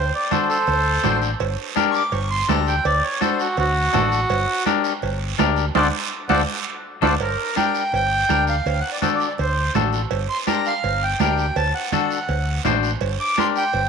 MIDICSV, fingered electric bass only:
0, 0, Header, 1, 2, 480
1, 0, Start_track
1, 0, Key_signature, -2, "minor"
1, 0, Tempo, 362757
1, 1860, Time_signature, 4, 2, 24, 8
1, 18378, End_track
2, 0, Start_track
2, 0, Title_t, "Fingered electric bass"
2, 0, Program_c, 0, 33
2, 895, Note_on_c, 0, 38, 91
2, 1281, Note_off_c, 0, 38, 0
2, 1373, Note_on_c, 0, 33, 86
2, 1760, Note_off_c, 0, 33, 0
2, 1853, Note_on_c, 0, 31, 97
2, 2048, Note_off_c, 0, 31, 0
2, 2807, Note_on_c, 0, 31, 98
2, 3196, Note_off_c, 0, 31, 0
2, 3291, Note_on_c, 0, 38, 86
2, 3679, Note_off_c, 0, 38, 0
2, 3773, Note_on_c, 0, 38, 96
2, 3967, Note_off_c, 0, 38, 0
2, 4734, Note_on_c, 0, 38, 95
2, 5120, Note_off_c, 0, 38, 0
2, 5211, Note_on_c, 0, 33, 86
2, 5598, Note_off_c, 0, 33, 0
2, 5689, Note_on_c, 0, 31, 93
2, 5885, Note_off_c, 0, 31, 0
2, 6653, Note_on_c, 0, 31, 104
2, 7039, Note_off_c, 0, 31, 0
2, 7139, Note_on_c, 0, 38, 90
2, 7522, Note_off_c, 0, 38, 0
2, 7617, Note_on_c, 0, 38, 100
2, 7796, Note_off_c, 0, 38, 0
2, 8328, Note_on_c, 0, 38, 97
2, 8511, Note_off_c, 0, 38, 0
2, 9290, Note_on_c, 0, 38, 105
2, 9472, Note_off_c, 0, 38, 0
2, 9522, Note_on_c, 0, 31, 90
2, 9721, Note_off_c, 0, 31, 0
2, 10495, Note_on_c, 0, 31, 100
2, 10881, Note_off_c, 0, 31, 0
2, 10982, Note_on_c, 0, 38, 89
2, 11365, Note_off_c, 0, 38, 0
2, 11460, Note_on_c, 0, 38, 97
2, 11652, Note_off_c, 0, 38, 0
2, 12428, Note_on_c, 0, 38, 85
2, 12809, Note_off_c, 0, 38, 0
2, 12903, Note_on_c, 0, 33, 86
2, 13287, Note_off_c, 0, 33, 0
2, 13381, Note_on_c, 0, 31, 100
2, 13574, Note_off_c, 0, 31, 0
2, 14338, Note_on_c, 0, 31, 94
2, 14724, Note_off_c, 0, 31, 0
2, 14820, Note_on_c, 0, 38, 81
2, 15205, Note_off_c, 0, 38, 0
2, 15300, Note_on_c, 0, 38, 90
2, 15493, Note_off_c, 0, 38, 0
2, 16261, Note_on_c, 0, 38, 97
2, 16646, Note_off_c, 0, 38, 0
2, 16741, Note_on_c, 0, 33, 93
2, 17127, Note_off_c, 0, 33, 0
2, 17218, Note_on_c, 0, 31, 98
2, 17413, Note_off_c, 0, 31, 0
2, 18181, Note_on_c, 0, 31, 99
2, 18378, Note_off_c, 0, 31, 0
2, 18378, End_track
0, 0, End_of_file